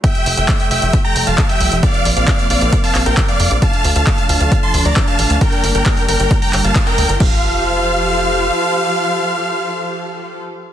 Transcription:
0.04 string section F3 G3 A3, supersaw synth E5 G5, kick, closed hi-hat
0.15 closed hi-hat
0.26 analog synth bass F1, open hi-hat
0.37 analog synth bass F1, supersaw synth E5 G5, closed hi-hat
0.49 kick, clap, closed hi-hat
0.60 closed hi-hat
0.71 analog synth bass F1, supersaw synth E5 G5, open hi-hat
0.82 analog synth bass F1, closed hi-hat
0.93 kick, closed hi-hat
1.04 supersaw synth G5 A#5
1.16 analog synth bass F1, open hi-hat
1.27 analog synth bass F1, supersaw synth F5 A5, closed hi-hat
1.38 kick, clap, closed hi-hat
1.49 supersaw synth E5 G5, closed hi-hat
1.61 analog synth bass C2, open hi-hat
1.72 analog synth bass F1, closed hi-hat
1.83 string section A#3 C4, supersaw synth D5 F5, kick, closed hi-hat
1.94 closed hi-hat
2.05 analog synth bass A#1, open hi-hat
2.16 analog synth bass A#1, supersaw synth D5 F5, closed hi-hat
2.28 kick, clap, closed hi-hat
2.39 closed hi-hat
2.50 analog synth bass A#1, supersaw synth D5 F5, open hi-hat
2.61 analog synth bass A#1, closed hi-hat
2.73 kick, closed hi-hat
2.84 supersaw synth F5 A5, open hi-hat
2.95 analog synth bass A#1, clap, open hi-hat
3.06 analog synth bass A#1, supersaw synth A#4 G5, closed hi-hat
3.17 kick, clap, closed hi-hat
3.28 supersaw synth D5 F5, closed hi-hat
3.40 analog synth bass F2, open hi-hat
3.51 analog synth bass A#1, closed hi-hat
3.62 string section F3 A3 D4, supersaw synth F5 A5, kick, closed hi-hat
3.73 closed hi-hat
3.85 analog synth bass D2, open hi-hat
3.96 analog synth bass D2, supersaw synth F5 A5, closed hi-hat
4.07 kick, clap, closed hi-hat
4.18 closed hi-hat
4.29 analog synth bass D2, supersaw synth F5 A5, open hi-hat
4.40 analog synth bass D2, closed hi-hat
4.52 kick, closed hi-hat
4.63 supersaw synth A5 C6
4.74 analog synth bass D2, open hi-hat
4.85 analog synth bass D2, supersaw synth D5 A#5, closed hi-hat
4.96 kick, clap, closed hi-hat
5.08 supersaw synth F5 A5, closed hi-hat
5.19 analog synth bass A1, open hi-hat
5.30 analog synth bass D2, closed hi-hat
5.41 string section G3 A#3, supersaw synth A#4 G5, kick, closed hi-hat
5.52 closed hi-hat
5.64 analog synth bass G1, open hi-hat
5.75 analog synth bass G1, supersaw synth A#4 G5, closed hi-hat
5.86 kick, clap, closed hi-hat
5.97 closed hi-hat
6.08 analog synth bass G1, supersaw synth A#4 G5, open hi-hat
6.20 analog synth bass G1, closed hi-hat
6.31 kick, closed hi-hat
6.42 supersaw synth G5 A#5, open hi-hat
6.53 analog synth bass G1, clap, open hi-hat
6.64 analog synth bass G1, supersaw synth F5 A5, closed hi-hat
6.76 kick, clap, closed hi-hat
6.87 supersaw synth A#4 G5, closed hi-hat
6.98 analog synth bass D2, open hi-hat
7.09 analog synth bass G1, closed hi-hat
7.20 analog synth bass F1, string section F3 F4 G4 A4 C5, supersaw synth F5, kick, crash

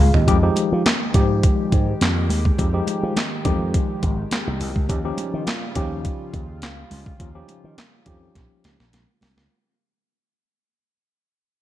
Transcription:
Already playing: analog synth pad D#3 G#3 F4
0.00 tine electric piano G#4 F5
0.14 slap bass D#2, tine electric piano G4 D#5, floor tom
0.27 slap bass F2, analog synth pad D#3 G#3 G4, tine electric piano F3 G#3 D#4 G4, kick, closed hi-hat, muted conga
0.42 tine electric piano F3 G#3 D#4 G4
0.56 closed hi-hat, muted conga
0.72 slap bass F3
0.86 snare, clap, closed hi-hat, high conga
1.14 slap bass G#2, tine electric piano F3 G#3 D#4 G4, kick, closed hi-hat
1.43 kick, closed hi-hat, muted conga
1.72 slap bass G#2, kick, closed hi-hat
2.01 slap bass F2, snare, clap, closed hi-hat, high conga
2.30 slap bass D#2, open hi-hat, high conga
2.45 kick, high conga
2.58 slap bass F2, tine electric piano F3 G#3 D#4 G4, kick, closed hi-hat, muted conga
2.73 tine electric piano F3 G#3 D#4 G4
2.87 closed hi-hat, muted conga
3.03 slap bass F3
3.16 snare, clap, closed hi-hat, high conga
3.44 slap bass F2, tine electric piano F3 G#3 D#4 G4, kick, closed hi-hat, low conga
3.74 kick, closed hi-hat, muted conga
4.03 slap bass G#1, kick, closed hi-hat
4.31 snare, clap, closed hi-hat, high conga
4.47 slap bass C2
4.60 slap bass C2, open hi-hat, high conga
4.76 slap bass C#2, kick, high conga
4.89 slap bass D#2, analog synth pad C#3 G3 F4, tine electric piano F3 C#4 D#4 G4, kick, closed hi-hat, muted conga
5.04 tine electric piano F3 C#4 D#4 G4
5.18 closed hi-hat, muted conga
5.34 slap bass D#3
5.47 snare, clap, closed hi-hat, high conga
5.75 slap bass D#2, tine electric piano F3 C#4 D#4 G4, kick, closed hi-hat
6.05 kick, closed hi-hat, muted conga
6.33 slap bass D#2, kick, closed hi-hat
6.62 slap bass C#2, snare, clap, closed hi-hat, high conga
6.91 slap bass C#2, open hi-hat, high conga
7.06 kick, high conga
7.20 slap bass D#2, tine electric piano F3 C#4 D#4 F4, kick, closed hi-hat, muted conga
7.35 tine electric piano F3 C#4 D#4 G4
7.48 closed hi-hat, muted conga
7.64 slap bass D#3
7.78 snare, clap, closed hi-hat, high conga
8.06 slap bass F2, tine electric piano F3 C#4 D#4 G4, kick, closed hi-hat, low conga
8.35 slap bass A#1, kick, snare, closed hi-hat
8.64 slap bass C#2, snare, closed hi-hat
8.80 slap bass A#1, snare
8.93 slap bass A#1, snare, closed hi-hat, high conga
9.21 slap bass C2, snare, open hi-hat, high conga
9.37 slap bass C#2, snare, high conga

